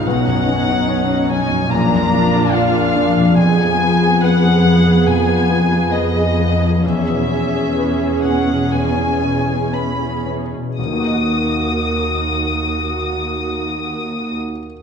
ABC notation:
X:1
M:4/4
L:1/16
Q:1/4=66
K:Ebm
V:1 name="Violin section"
^f6 a2 b4 =f4 | a4 g4 a4 e4 | =e6 g2 ^g4 =b2 z2 | e'16 |]
V:2 name="Viola section"
[^C^D]8 [=DF]8 | [CA]16 | [^C^G]12- [CG]3 z | [B,G]16 |]
V:3 name="Grand piano"
=B,,, ^F,, ^C ^D ^c D C F,, _B,,, =F,, =D F B F D F,, | F,, F, C A c A C F, F,, C F, A c A C F, | =E,, =B,, ^C ^G =B G C B,, E,, C B,, G B G C B,, | [E,,E,B,Geg]16 |]
V:4 name="Harp"
[=B,,Ed] ^F, ^C ^D ^c D F, C _B,, =F, =D2 B2 F, D | F,, F, C A c A F, C F,, F, C A c A F, C | =E,, =B,, ^C ^G =B G B,, C E,, B,, C G B G B,, C | [E,B,EGeg]16 |]
V:5 name="Cello section" clef=bass
=B,,8 _B,,8 | F,,16 | =E,,12- E,,3 z | E,,16 |]